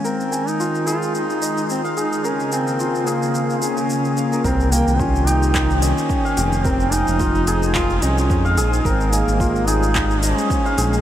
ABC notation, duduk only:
X:1
M:4/4
L:1/16
Q:"Swing 16ths" 1/4=109
K:Cphr
V:1 name="Duduk"
C3 E3 F2 E4 C2 E2 | D2 C4 B,4 D6 | C2 B,2 D2 E4 D6 | C2 E6 F2 D4 z2 |
C2 B,4 E4 D6 |]